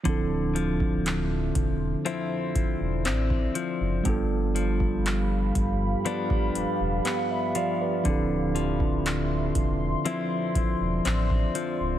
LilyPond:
<<
  \new Staff \with { instrumentName = "Ambient pad" } { \time 4/4 \key d \dorian \tempo 4 = 60 << { <f c'''>1 | <g' b''>1 | <f c'''>1 | } \\ { e''2 d''2 | f''1 | e''2 d''2 | } >> }
  \new Staff \with { instrumentName = "Tine electric piano" } { \time 4/4 \key d \dorian << { r1 | r2. r16 e''16 <d'' f''>16 <b' d''>16~ | <b' d''>16 r2. r8. | } \\ { <f c' d' e' a'>1 | <g b d' f' a'>1 | <f c' d' e' a'>1 | } >> }
  \new Staff \with { instrumentName = "Clean electric guitar" } { \clef bass \time 4/4 \key d \dorian d8 f4. <f c' e'>4 c'8 f8 | g,8 f4. <f b d'>4 b8 f8 | d8 f4. <f c' e'>4 c'8 f8 | }
  \new Staff \with { instrumentName = "Sub bass" } { \clef bass \time 4/4 \key d \dorian d,,4. e,,8 r8 e,,16 e,,16 a,,8 r16 fis,,16 | g,,4. g,,8 r8 e,,16 e,,16 r4 | d,,4. e,,8 r8 e,,16 e,,16 a,,8 r16 cis,,16 | }
  \new DrumStaff \with { instrumentName = "Drums" } \drummode { \time 4/4 <hh bd>8 hh16 bd16 <hc hh>8 <hh bd>8 hh8 <hh bd>8 <hc hh>16 bd16 hh8 | <hh bd>8 hh16 bd16 <hc hh>8 <hh bd>8 hh16 bd16 hh8 <hc hh>8 hh8 | <hh bd>8 hh16 bd16 <hc hh>8 <hh bd>8 hh8 <hh bd>8 <hc hh>16 bd16 hh8 | }
>>